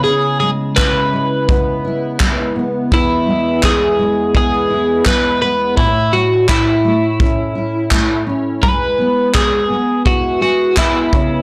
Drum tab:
CP |--x---x-|--x---x-|--x---x-|--x---x-|
BD |--o-o-o-|o-o-o-o-|o-o-o-o-|o-o-o-oo|